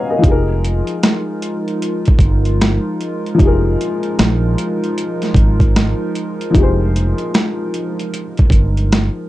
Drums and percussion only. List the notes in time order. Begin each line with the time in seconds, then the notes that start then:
0.24 kick, closed hi-hat
0.64 closed hi-hat
0.87 closed hi-hat
1.03 snare, closed hi-hat
1.42 closed hi-hat
1.68 closed hi-hat
1.82 closed hi-hat
2.05 kick, closed hi-hat
2.19 kick, closed hi-hat
2.45 closed hi-hat
2.61 snare, closed hi-hat
3.01 closed hi-hat
3.26 closed hi-hat
3.39 kick, closed hi-hat
3.81 closed hi-hat
4.03 closed hi-hat
4.19 snare, closed hi-hat
4.58 closed hi-hat
4.84 closed hi-hat
4.98 closed hi-hat
5.22 snare, closed hi-hat
5.34 kick, closed hi-hat
5.60 kick, closed hi-hat
5.76 snare, closed hi-hat
6.15 closed hi-hat
6.41 closed hi-hat
6.55 kick, closed hi-hat
6.96 closed hi-hat
7.18 closed hi-hat
7.34 snare, closed hi-hat
7.74 closed hi-hat
7.99 closed hi-hat
8.14 closed hi-hat
8.37 kick, closed hi-hat
8.50 kick, closed hi-hat
8.77 closed hi-hat
8.92 snare, closed hi-hat